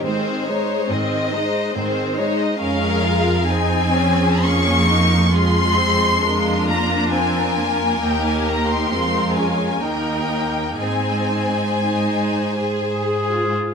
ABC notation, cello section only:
X:1
M:3/4
L:1/8
Q:1/4=66
K:Ab
V:1 name="Cello section" clef=bass
A,,2 A,,2 A,,2 | F,,6- | F,,6 | E,,2 F,,2 E,,2 |
A,,6 |]